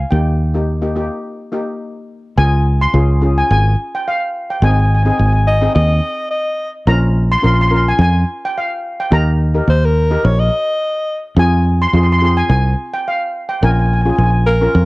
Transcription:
0.11 fingered electric bass D#2, steel pan A#3 D#4 G4 G5
0.54 steel pan A#3 D#4 G4
0.82 steel pan A#3 D#4 G4
0.96 steel pan A#3 D#4 G4
1.52 steel pan A#3 D#4 G4
2.38 fingered electric bass C#2, steel pan C#4 F4 G#4 G#5
2.81 steel pan C6
2.94 fingered electric bass C#2, steel pan C#4 F4 G#4
3.21 steel pan C#4 F4 G#4
3.38 steel pan G#5
3.51 fingered electric bass G#1, steel pan G#5
3.95 steel pan G5
4.08 steel pan F5
4.50 steel pan G5
4.62 fingered electric bass G#1, steel pan C4 D#4 G#4 G#5
4.71 steel pan G#5
4.80 steel pan G#5
4.86 steel pan G#5
4.95 steel pan G#5
5.03 steel pan C4 D#4 G#4 G#5
5.10 steel pan G#5
5.18 fingered electric bass G#1, steel pan G#5
5.26 steel pan G#5
5.33 steel pan G#5
5.47 alto saxophone D#5
5.61 steel pan C4 D#4 G#4
5.75 fingered electric bass D#2, alto saxophone D#5
6.31 alto saxophone D#5
6.87 fingered electric bass A#1, steel pan C#4 F4 A#4 A#5
7.32 steel pan C6
7.38 steel pan C6
7.42 fingered electric bass A#1, steel pan C#4 F4 A#4 C6
7.54 steel pan C6
7.61 steel pan C6
7.68 steel pan C#4 F4 A#4 C6
7.76 steel pan C6
7.88 steel pan G#5
7.99 fingered electric bass F2, steel pan G#5
8.45 steel pan G5
8.58 steel pan F5
9.00 steel pan G5
9.11 fingered electric bass D#2, steel pan D#4 G4 A#4 A#5
9.54 steel pan D#4 G4 A#4
9.68 fingered electric bass D#2, alto saxophone C5
9.85 alto saxophone A#4
10.10 steel pan D#4 G4 A#4
10.25 fingered electric bass A#1, alto saxophone C#5
10.39 alto saxophone D#5
11.36 fingered electric bass F2, steel pan C4 F4 G#4 G#5
11.82 steel pan C6
11.87 steel pan C6
11.93 fingered electric bass F2, steel pan C4 F4 G#4 C6
12.03 steel pan C6
12.12 steel pan C6
12.18 steel pan C4 F4 G#4 C6
12.25 steel pan C6
12.37 steel pan G#5
12.49 fingered electric bass C2, steel pan G#5
12.94 steel pan G5
13.08 steel pan F5
13.49 steel pan G5
13.62 fingered electric bass A#1, steel pan C#4 F4 A#4 G#5
13.71 steel pan G#5
13.79 steel pan G#5
13.86 steel pan G#5
13.93 steel pan G#5
14.01 steel pan G#5
14.05 steel pan C#4 F4 G#4
14.10 steel pan G#5
14.16 fingered electric bass A#1, steel pan G#5
14.24 steel pan G#5
14.31 steel pan G#5
14.46 alto saxophone A#4
14.61 steel pan C#4 F4 A#4
14.75 fingered electric bass F2

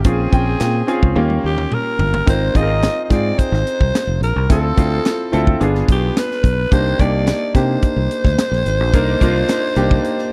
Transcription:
0.00 alto saxophone G4
0.04 fingered electric bass A#1, grand piano C4 C#4 F4 G#4, kick, closed hi-hat
0.09 alto saxophone G#4
0.32 fingered electric bass A#1, grand piano C4 C#4 F4 G5, kick, closed hi-hat
0.60 fingered electric bass A#2, snare, closed hi-hat
0.87 grand piano C4 C#4 F4 G#4, closed hi-hat
1.03 fingered electric bass C#2, kick
1.16 fingered electric bass D#2, grand piano A#3 C#4 F4 G4, high tom
1.30 high tom
1.44 fingered electric bass D#2, alto saxophone G4
1.58 mid tom
1.72 alto saxophone A#4, mid tom
1.99 fingered electric bass G1, floor tom
2.14 floor tom
2.26 fingered electric bass G#1, grand piano C4 D#4 F4 A#4, alto saxophone C5, kick, closed hi-hat
2.54 fingered electric bass G#1, grand piano C4 D#4 F4 G#4, alto saxophone D#5, kick, closed hi-hat
2.63 grand piano A#4
2.82 snare, closed hi-hat
3.05 alto saxophone D#5
3.10 fingered electric bass G#2, grand piano C4 D#4 F4 G#4, alto saxophone D5, kick, snare, closed hi-hat
3.39 alto saxophone C5, kick, closed hi-hat
3.52 fingered electric bass G#1, snare
3.67 closed hi-hat
3.80 fingered electric bass C2, kick
3.95 snare, closed hi-hat
4.07 fingered electric bass F1
4.21 fingered electric bass A#1, alto saxophone A#4, closed hi-hat
4.36 fingered electric bass C2
4.49 fingered electric bass D2, grand piano C4 E4 F4 A4, alto saxophone A4, kick, closed hi-hat
4.77 fingered electric bass D2, grand piano C4 E4 F4 C5, kick, closed hi-hat
5.05 snare, closed hi-hat
5.32 fingered electric bass D2, grand piano C4 E4 F4 A4, closed hi-hat
5.47 kick
5.60 fingered electric bass G1, grand piano B3 D4 F4 G#4, closed hi-hat
5.75 snare
5.88 fingered electric bass B1, alto saxophone G4, kick, closed hi-hat
6.17 alto saxophone B4, snare, closed hi-hat
6.31 snare
6.44 fingered electric bass B1, kick, closed hi-hat
6.71 fingered electric bass C2, grand piano A#3 D4 D#4 G4, alto saxophone C5, kick, closed hi-hat
6.99 fingered electric bass C2, grand piano A#3 D4 D#4 G4, alto saxophone D5, kick, closed hi-hat
7.27 snare, closed hi-hat
7.54 fingered electric bass C3, grand piano A#3 D4 D#4 G4, alto saxophone C5, kick, snare, closed hi-hat
7.82 kick, closed hi-hat
7.96 fingered electric bass C2
8.11 closed hi-hat
8.25 fingered electric bass D2, kick, snare
8.38 snare, closed hi-hat
8.51 fingered electric bass A#1, snare
8.66 fingered electric bass G#1, closed hi-hat
8.80 fingered electric bass A#1
8.93 fingered electric bass C2, grand piano A#3 D4 D#4 A#4, kick, closed hi-hat
9.21 fingered electric bass C2, grand piano A#3 D4 D#4 F4, kick, closed hi-hat
9.48 snare, closed hi-hat
9.76 fingered electric bass C2, grand piano A#3 D4 D#4 G4, closed hi-hat
9.91 kick
10.04 closed hi-hat
10.19 snare

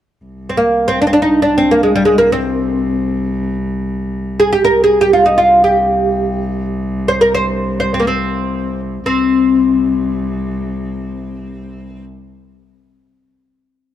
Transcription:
0.24 cello C2
0.49 oud C4
0.57 oud A#3
0.88 oud C4
1.02 oud D4
1.07 oud C4
1.13 oud D4
1.22 oud D#4
1.42 oud D4
1.58 oud C4
1.71 oud A#3
1.83 oud G#3
1.95 oud G3
2.05 oud G#3
2.18 oud A#3
2.32 oud C4
4.40 oud G#4
4.53 oud G4
4.65 cello C2, oud A#4
4.84 oud G#4
5.01 oud G4
5.13 oud F4
5.26 oud D#4
5.38 oud F4
5.64 oud G4
7.08 oud C5
7.21 oud A#4
7.34 oud C5
7.80 oud C5
7.94 oud C4
8.00 oud A#3
8.07 oud C4
9.06 cello C2, oud C4

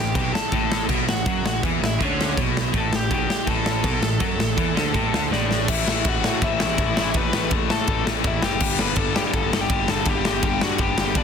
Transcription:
Already playing: picked electric bass A1, distorted electric guitar A2, lead electric guitar G4 G5
0.15 picked electric bass B1, distorted electric guitar B2, lead electric guitar G4 G5, kick, crash
0.34 lead electric guitar A4 A5, muted distorted electric guitar stroke, muted overdriven electric guitar stroke, muted picked electric bass stroke, snare
0.52 picked electric bass A1, distorted electric guitar A2, kick, crash
0.72 snare
0.89 picked electric bass B1, distorted electric guitar B2, kick, crash
1.08 picked electric bass A1, distorted electric guitar A2, lead electric guitar F#4 F#5, snare
1.26 picked electric bass F#2, distorted electric guitar F#3, kick, crash
1.45 picked electric bass A1, distorted electric guitar A2, snare
1.63 picked electric bass E2, distorted electric guitar E3, kick, crash
1.82 picked electric bass A1, distorted electric guitar A2, lead electric guitar E4 E5, snare
2.00 picked electric bass D2, distorted electric guitar D3, lead electric guitar C#4, kick, crash
2.05 lead electric guitar C#5
2.21 snare
2.37 picked electric bass B1, distorted electric guitar B2, kick, crash
2.57 snare
2.74 picked electric bass A1, distorted electric guitar A2, kick, crash
2.78 lead electric guitar A4 A5
2.92 picked electric bass A1, distorted electric guitar A2, lead electric guitar G4 G5, snare
3.11 picked electric bass B1, distorted electric guitar B2, lead electric guitar G4 G5, kick, crash
3.28 muted overdriven electric guitar stroke, muted picked electric bass stroke, muted distorted electric guitar stroke, snare
3.47 picked electric bass A1, distorted electric guitar A2, lead electric guitar A4 A5, kick, crash
3.66 snare
3.84 picked electric bass B1, distorted electric guitar B2, kick, crash
4.03 picked electric bass A1, distorted electric guitar A2, snare
4.20 picked electric bass F#2, distorted electric guitar F#3, kick, crash
4.39 picked electric bass A1, distorted electric guitar A2, snare
4.58 picked electric bass E2, distorted electric guitar E3, kick, crash
4.77 picked electric bass D2, distorted electric guitar D3, snare
4.94 picked electric bass A1, distorted electric guitar A2, kick, crash
5.13 picked electric bass D2, distorted electric guitar D3, snare
5.32 picked electric bass A1, distorted electric guitar A2, lead electric guitar D4 D5, snare
5.51 snare
5.68 picked electric bass A1, distorted electric guitar A2 E3 A3, lead electric guitar E4 E5, kick, crash
5.87 picked electric bass A1, distorted electric guitar A2 E3 A3, lead electric guitar E4 E5, snare
6.05 picked electric bass A1, distorted electric guitar A2 E3 A3, lead electric guitar F#4, kick, ride
6.09 lead electric guitar F#5
6.24 picked electric bass A2, distorted electric guitar A2 E3 A3, snare
6.42 picked electric bass A1, distorted electric guitar A2 E3 A3, lead electric guitar E4 E5, kick, ride
6.60 picked electric bass A1, distorted electric guitar A2 E3 A3, lead electric guitar E4 E5, snare
6.78 picked electric bass A1, distorted electric guitar A2 E3 A3, kick, ride
6.97 picked electric bass A1, distorted electric guitar A2 E3 A3, snare
7.14 picked electric bass A1, distorted electric guitar A2 E3 A3, lead electric guitar B4 B5, kick, ride
7.33 picked electric bass A1, distorted electric guitar A2 E3 A3, snare
7.51 picked electric bass A1, distorted electric guitar A2 E3 A3, kick, ride
7.70 distorted electric guitar A2 E3 A3, picked electric bass A2, lead electric guitar A4 A5, snare
7.87 picked electric bass A1, distorted electric guitar A2 E3 A3, kick, ride
8.06 picked electric bass A1, distorted electric guitar A2 E3 A3, snare
8.24 picked electric bass A1, distorted electric guitar A2 E3 A3, lead electric guitar E4 E5, kick, ride
8.42 picked electric bass F#1, distorted electric guitar A2 E3 A3, lead electric guitar G4 G5, snare
8.60 picked electric bass G1, distorted electric guitar G2 D3 G3, kick, crash
8.79 picked electric bass G1, distorted electric guitar G2 D3 G3, lead electric guitar B4 B5, snare
8.96 picked electric bass G1, distorted electric guitar G2 D3 G3, lead electric guitar A4 A5, kick, ride
9.16 distorted electric guitar G2 D3 G3, picked electric bass G2, lead electric guitar G4 G5, snare
9.33 picked electric bass G1, distorted electric guitar G2 D3 G3, lead electric guitar A4 A5, kick, ride
9.51 picked electric bass G1, distorted electric guitar G2 D3 G3, snare
9.61 lead electric guitar G4 G5
9.70 picked electric bass G1, distorted electric guitar G2 D3 G3, kick, ride
9.88 picked electric bass G1, distorted electric guitar G2 D3 G3, lead electric guitar A4 A5, snare
10.05 picked electric bass G1, distorted electric guitar G2 D3 G3, lead electric guitar G4 G5, kick, ride
10.25 picked electric bass G1, distorted electric guitar G2 D3 G3, snare
10.43 picked electric bass G1, distorted electric guitar G2 D3 G3, lead electric guitar G4 G5, kick, ride
10.61 distorted electric guitar G2 D3 G3, picked electric bass G2, lead electric guitar F#4 F#5, snare
10.78 picked electric bass G1, distorted electric guitar G2 D3 G3, lead electric guitar G4 G5, kick, ride
10.98 picked electric bass G1, distorted electric guitar G2 D3 G3, snare
11.15 picked electric bass G1, distorted electric guitar G2 D3 G3, lead electric guitar D4 D5, kick, ride

